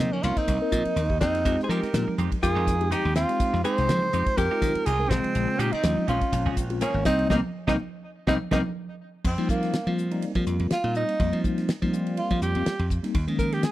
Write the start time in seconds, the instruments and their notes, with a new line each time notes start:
Already playing: tine electric piano A#3 C4 D#4 A#4, hollow-body jazz guitar C4, tenor saxophone D#4
0.13 hollow-body jazz guitar A#3, tenor saxophone C#4
0.23 slap bass C2, tine electric piano A#3 C4 D#4 A#4, hollow-body jazz guitar C#4, tenor saxophone F4, hi-hat pedal, ride
0.37 hollow-body jazz guitar C4, tenor saxophone D#4, kick, ride
0.48 slap bass C2, kick, hi-hat pedal, ride
0.61 tine electric piano A#3 C4 D#4 A#4
0.72 slap bass A#2, kick, snare, hi-hat pedal, ride, high conga
0.85 muted slap bass stroke, ride
0.96 slap bass D#2, snare, hi-hat pedal, ride
1.10 tine electric piano A#3 C4 D#4 G4, kick
1.20 slap bass F2, hollow-body jazz guitar C4, tenor saxophone D#4, kick, snare, hi-hat pedal, ride
1.35 snare, ride
1.45 slap bass F2, tine electric piano G#3 C4 D#4 G4, clean electric guitar G#3 C4 D#4 G4, kick, hi-hat pedal, ride, muted conga
1.60 tenor saxophone C5, snare
1.64 hollow-body jazz guitar G#4
1.69 slap bass F3, clean electric guitar G#3 C4 D#4 G4, hollow-body jazz guitar G4, tenor saxophone A#4, snare, hi-hat pedal, ride
1.83 clean electric guitar C4 D#4 G4, muted slap bass stroke, snare, ride
1.93 slap bass A#2, tine electric piano G#3 C4 D#4 G4, snare, hi-hat pedal, ride, high conga
2.08 muted slap bass stroke, muted clean electric guitar stroke
2.18 slap bass F2, clean electric guitar G#3 C4 D#4 G4, hi-hat pedal, ride, high conga
2.32 muted clean electric guitar stroke, kick, ride
2.42 slap bass F2, tine electric piano G#3 C4 D#4 A#4, hollow-body jazz guitar F4, tenor saxophone G#4, muted clean electric guitar stroke, kick, hi-hat pedal, ride
2.55 slap bass F2, clean electric guitar G#3 C4 D#4 G4
2.67 muted clean electric guitar stroke, kick, snare, hi-hat pedal, ride
2.80 tine electric piano G#3 C4 D#4 G4, ride
2.91 clean electric guitar G#3 C4 D#4 G4, hollow-body jazz guitar D#4, tenor saxophone G4, snare, hi-hat pedal, ride, muted conga, high conga
3.04 slap bass D#2, muted clean electric guitar stroke
3.15 hollow-body jazz guitar C4, tenor saxophone F4, muted clean electric guitar stroke, snare, hi-hat pedal, ride
3.29 tine electric piano G#3 C4 D#4 G4, muted clean electric guitar stroke, snare, ride
3.40 kick, hi-hat pedal, ride, muted conga
3.53 slap bass F2, muted clean electric guitar stroke, snare
3.64 clean electric guitar G#3 C4 D#4 G4, tine electric piano G#3 C4 D#4 G5, hollow-body jazz guitar G#4, tenor saxophone C5, hi-hat pedal, ride, muted conga
3.78 slap bass C2, clean electric guitar C4 D#4 G4, snare, ride
3.89 slap bass F3, snare, hi-hat pedal, ride, high conga, low conga
4.02 muted clean electric guitar stroke
4.13 slap bass F2, tine electric piano G#3 C4 D#4 F4, clean electric guitar G#3 C4 D#4 G4, hi-hat pedal, ride
4.26 muted slap bass stroke, muted clean electric guitar stroke, kick, ride
4.37 slap bass F2, hollow-body jazz guitar G4, tenor saxophone A#4, muted clean electric guitar stroke, kick, hi-hat pedal, ride, muted conga
4.50 tine electric piano G#3 C4 D#4 F4, clean electric guitar G#3 C4 D#4 G4
4.62 slap bass D#3, kick, hi-hat pedal, ride, high conga
4.75 muted slap bass stroke, ride
4.86 slap bass C2, clean electric guitar G#3 C4 D#4 G4, hollow-body jazz guitar F4, tenor saxophone G#4, hi-hat pedal, ride, muted conga
4.99 tine electric piano G#3 C4 D#4 A#4, muted clean electric guitar stroke
5.09 slap bass A#1, tine electric piano C#3 G#3 C4 F4, hollow-body jazz guitar G#3, tenor saxophone C4, muted clean electric guitar stroke, kick, snare, hi-hat pedal, ride, high conga
5.24 muted clean electric guitar stroke, ride
5.35 slap bass A#1, hi-hat pedal, ride
5.48 muted clean electric guitar stroke
5.59 slap bass A#2, clean electric guitar F3 C4 C#4 G#4, hollow-body jazz guitar D#4, tenor saxophone G4, hi-hat pedal, ride
5.72 clean electric guitar C4 C#4 G#4, hollow-body jazz guitar C4, tenor saxophone D#4, muted slap bass stroke, ride
5.83 slap bass D#2, tine electric piano G#3 C4 C#4 F4, snare, hi-hat pedal, ride, high conga
5.97 muted clean electric guitar stroke, muted slap bass stroke
6.07 slap bass A#1, clean electric guitar F3 C4 C#4 G#4, hollow-body jazz guitar C#4, tenor saxophone F4, hi-hat pedal, ride
6.21 muted clean electric guitar stroke, kick, ride
6.32 slap bass A#1, tine electric piano G#3 C4 C#4 F4, muted clean electric guitar stroke, kick, hi-hat pedal, ride, muted conga
6.46 slap bass A#1, clean electric guitar F3 C4 C#4 G#4
6.57 muted clean electric guitar stroke, kick, hi-hat pedal, ride
6.70 tine electric piano G#3 C4 C#4 F4, ride
6.81 clean electric guitar F3 C4 C#4 G#4, hollow-body jazz guitar A#3, tenor saxophone C#4, snare, hi-hat pedal, ride, muted conga, high conga
6.94 slap bass G#1
7.05 slap bass C2, tine electric piano G3 A#3 C4 D#4, hollow-body jazz guitar C4, tenor saxophone D#4, muted clean electric guitar stroke, kick, snare, hi-hat pedal, ride
7.19 muted clean electric guitar stroke, ride
7.30 slap bass C2, tine electric piano A#3 C4 D#4, hollow-body jazz guitar A#3 C4 D#4, clean electric guitar C4 D#4 G4, tenor saxophone D#4, kick, snare, high conga
7.67 slap bass C2, tine electric piano A#3 C4 D#4, hollow-body jazz guitar A#3 C4 D#4, clean electric guitar C4 D#4 G4, tenor saxophone D#4, kick, snare, high conga
8.27 slap bass C2, tine electric piano A#3 C4 D#4, hollow-body jazz guitar A#3 C4 D#4, clean electric guitar C4 D#4 G4, tenor saxophone D#4, kick, snare, high conga
8.51 slap bass C2, tine electric piano A#3 C4 D#4, hollow-body jazz guitar A#3 C4 D#4, clean electric guitar C4 D#4 G4, tenor saxophone D#4, kick, snare, high conga
9.24 slap bass F2, tenor saxophone C4, kick, crash
9.38 slap bass F3, tine electric piano G3 A#3 C4 D#4, ride
9.49 tenor saxophone A#3, kick, hi-hat pedal
9.63 snare, ride
9.73 snare, ride
9.87 slap bass F3, tine electric piano G3 A#3 C4 F4, ride
9.98 hi-hat pedal
10.11 tine electric piano G3 A#3 C4 D#4, ride
10.22 ride
10.35 slap bass F3, tine electric piano G3 A#3 C4 F4, kick, ride
10.46 slap bass F2, snare, hi-hat pedal
10.60 slap bass F2, ride
10.71 tenor saxophone F4, muted slap bass stroke, snare, ride
10.84 slap bass A#2, tine electric piano G3 A#3 C4 D#4, ride
10.95 tenor saxophone D#4, hi-hat pedal
11.09 ride
11.20 slap bass F2, tine electric piano G3 A#3 C4 D#4, kick, ride
11.32 slap bass F3, ride
11.44 kick, hi-hat pedal
11.58 snare, ride
11.69 snare, ride
11.82 slap bass F3, tine electric piano G3 A#3 C4 D#4, kick, ride
11.92 tine electric piano G3 A#3 C4 F4, hi-hat pedal
12.07 ride
12.17 tenor saxophone F4, ride
12.31 slap bass F3, kick, ride
12.42 slap bass F2, tenor saxophone G4, hi-hat pedal
12.55 slap bass F2, ride
12.66 muted slap bass stroke, snare, ride
12.79 slap bass F2, ride
12.90 kick, hi-hat pedal
13.03 tine electric piano G3 A#3 C4 D#4, snare, ride
13.14 slap bass D#2, kick, ride
13.27 slap bass D#3, tine electric piano F3 G#3 A#3 C#4, ride
13.39 tenor saxophone A#4, kick, hi-hat pedal
13.52 tenor saxophone G4, snare, ride
13.63 tenor saxophone G#4, snare, ride